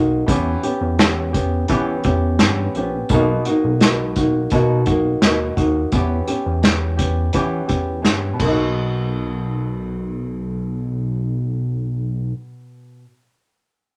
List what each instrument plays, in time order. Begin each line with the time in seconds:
Already playing: analog synth bass B1, nylon-string guitar A#3 D#4 F#4
0.27 analog synth bass E2, nylon-string guitar E3 B3 C#4 G4, kick, closed hi-hat
0.63 nylon-string guitar B3 C#4 G4, closed hi-hat
0.81 analog synth bass E2
0.98 nylon-string guitar E3 B3 C#4 G4, snare, closed hi-hat
1.33 nylon-string guitar B3 C#4 G4, kick, closed hi-hat
1.68 nylon-string guitar E3 B3 C#4 G4, analog synth bass E3, kick, closed hi-hat
2.04 analog synth bass E2, nylon-string guitar C#4 G4, kick, closed hi-hat
2.08 nylon-string guitar B3
2.39 analog synth bass G2, nylon-string guitar E3 B3 C#4, snare, closed hi-hat
2.44 nylon-string guitar G4
2.75 analog synth bass A#1, nylon-string guitar C#4 G4, closed hi-hat
2.80 nylon-string guitar B3
3.09 analog synth bass B1, nylon-string guitar B2 A#3 D#4, kick, closed hi-hat
3.14 nylon-string guitar F#4
3.45 nylon-string guitar D#4 F#4, closed hi-hat
3.49 nylon-string guitar A#3
3.64 analog synth bass B1
3.81 nylon-string guitar B2 A#3 D#4, snare, closed hi-hat
3.85 nylon-string guitar F#4
4.16 nylon-string guitar D#4 F#4, kick, closed hi-hat
4.20 nylon-string guitar A#3
4.50 nylon-string guitar B2 A#3 D#4, analog synth bass B2, kick, closed hi-hat
4.55 nylon-string guitar F#4
4.86 analog synth bass B1, nylon-string guitar D#4 F#4, kick, closed hi-hat
4.91 nylon-string guitar A#3
5.21 analog synth bass D#2, nylon-string guitar B2 A#3 D#4 F#4, snare, closed hi-hat
5.57 analog synth bass D#2, nylon-string guitar A#3 D#4 F#4, kick, closed hi-hat
5.92 analog synth bass E2, nylon-string guitar E3 B3 C#4 G4, kick, closed hi-hat
6.27 nylon-string guitar B3 C#4 G4, closed hi-hat
6.46 analog synth bass E2
6.62 nylon-string guitar E3 B3 C#4 G4, snare, closed hi-hat
6.97 nylon-string guitar B3 C#4 G4, kick, closed hi-hat
7.33 nylon-string guitar E3 B3 C#4 G4, analog synth bass E3, kick, closed hi-hat
7.68 analog synth bass E2, nylon-string guitar B3 C#4 G4, kick, closed hi-hat
8.02 analog synth bass G2, nylon-string guitar E3 B3 C#4 G4, snare, closed hi-hat
8.33 nylon-string guitar B2
8.40 analog synth bass B1, nylon-string guitar A#3, kick, crash
8.46 nylon-string guitar D#4
8.52 nylon-string guitar F#4